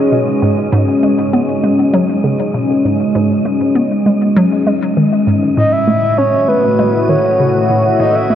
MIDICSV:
0, 0, Header, 1, 5, 480
1, 0, Start_track
1, 0, Tempo, 606061
1, 576, Time_signature, 4, 2, 24, 8
1, 6613, End_track
2, 0, Start_track
2, 0, Title_t, "Soft synth lead"
2, 0, Program_c, 0, 80
2, 4415, Note_on_c, 0, 75, 104
2, 4534, Note_on_c, 0, 76, 113
2, 4545, Note_off_c, 0, 75, 0
2, 4893, Note_on_c, 0, 73, 102
2, 4905, Note_off_c, 0, 76, 0
2, 5134, Note_on_c, 0, 71, 103
2, 5146, Note_off_c, 0, 73, 0
2, 5616, Note_on_c, 0, 73, 90
2, 5627, Note_off_c, 0, 71, 0
2, 6096, Note_off_c, 0, 73, 0
2, 6336, Note_on_c, 0, 75, 106
2, 6458, Note_on_c, 0, 76, 112
2, 6470, Note_off_c, 0, 75, 0
2, 6613, Note_off_c, 0, 76, 0
2, 6613, End_track
3, 0, Start_track
3, 0, Title_t, "Synth texture"
3, 0, Program_c, 1, 99
3, 0, Note_on_c, 1, 63, 86
3, 0, Note_on_c, 1, 75, 81
3, 4415, Note_on_c, 1, 51, 89
3, 4415, Note_on_c, 1, 87, 84
3, 4426, Note_off_c, 1, 75, 0
3, 4427, Note_off_c, 1, 63, 0
3, 6613, Note_off_c, 1, 51, 0
3, 6613, Note_off_c, 1, 87, 0
3, 6613, End_track
4, 0, Start_track
4, 0, Title_t, "Analog synth pad"
4, 0, Program_c, 2, 89
4, 0, Note_on_c, 2, 56, 74
4, 0, Note_on_c, 2, 61, 81
4, 0, Note_on_c, 2, 66, 90
4, 0, Note_on_c, 2, 71, 70
4, 0, Note_on_c, 2, 75, 87
4, 4414, Note_on_c, 2, 45, 90
4, 4415, Note_off_c, 2, 56, 0
4, 4415, Note_off_c, 2, 71, 0
4, 4415, Note_off_c, 2, 75, 0
4, 4416, Note_off_c, 2, 66, 0
4, 4757, Note_on_c, 2, 66, 73
4, 5298, Note_on_c, 2, 76, 86
4, 5531, Note_on_c, 2, 71, 81
4, 6613, Note_off_c, 2, 45, 0
4, 6613, Note_off_c, 2, 61, 0
4, 6613, Note_off_c, 2, 66, 0
4, 6613, Note_off_c, 2, 71, 0
4, 6613, Note_off_c, 2, 76, 0
4, 6613, End_track
5, 0, Start_track
5, 0, Title_t, "Synth arpeggio sound"
5, 0, Program_c, 3, 84
5, 97, Note_on_c, 3, 47, 77
5, 232, Note_off_c, 3, 47, 0
5, 336, Note_on_c, 3, 44, 76
5, 417, Note_off_c, 3, 44, 0
5, 575, Note_on_c, 3, 44, 104
5, 711, Note_off_c, 3, 44, 0
5, 816, Note_on_c, 3, 56, 77
5, 1020, Note_off_c, 3, 56, 0
5, 1056, Note_on_c, 3, 59, 75
5, 1192, Note_off_c, 3, 59, 0
5, 1296, Note_on_c, 3, 56, 76
5, 1500, Note_off_c, 3, 56, 0
5, 1534, Note_on_c, 3, 54, 99
5, 1739, Note_off_c, 3, 54, 0
5, 1775, Note_on_c, 3, 49, 76
5, 1857, Note_off_c, 3, 49, 0
5, 2014, Note_on_c, 3, 47, 79
5, 2151, Note_off_c, 3, 47, 0
5, 2256, Note_on_c, 3, 44, 75
5, 2337, Note_off_c, 3, 44, 0
5, 2496, Note_on_c, 3, 44, 97
5, 2632, Note_off_c, 3, 44, 0
5, 2738, Note_on_c, 3, 56, 76
5, 2941, Note_off_c, 3, 56, 0
5, 2976, Note_on_c, 3, 59, 75
5, 3111, Note_off_c, 3, 59, 0
5, 3217, Note_on_c, 3, 56, 77
5, 3420, Note_off_c, 3, 56, 0
5, 3456, Note_on_c, 3, 54, 107
5, 3660, Note_off_c, 3, 54, 0
5, 3694, Note_on_c, 3, 56, 76
5, 3776, Note_off_c, 3, 56, 0
5, 3935, Note_on_c, 3, 51, 75
5, 4017, Note_off_c, 3, 51, 0
5, 4174, Note_on_c, 3, 44, 74
5, 4378, Note_off_c, 3, 44, 0
5, 4414, Note_on_c, 3, 45, 97
5, 4551, Note_off_c, 3, 45, 0
5, 4654, Note_on_c, 3, 57, 77
5, 4859, Note_off_c, 3, 57, 0
5, 4899, Note_on_c, 3, 61, 76
5, 5033, Note_off_c, 3, 61, 0
5, 5136, Note_on_c, 3, 57, 77
5, 5340, Note_off_c, 3, 57, 0
5, 5376, Note_on_c, 3, 56, 101
5, 5580, Note_off_c, 3, 56, 0
5, 5616, Note_on_c, 3, 51, 75
5, 5697, Note_off_c, 3, 51, 0
5, 5857, Note_on_c, 3, 49, 75
5, 5992, Note_off_c, 3, 49, 0
5, 6097, Note_on_c, 3, 45, 78
5, 6178, Note_off_c, 3, 45, 0
5, 6334, Note_on_c, 3, 45, 101
5, 6471, Note_off_c, 3, 45, 0
5, 6575, Note_on_c, 3, 57, 80
5, 6613, Note_off_c, 3, 57, 0
5, 6613, End_track
0, 0, End_of_file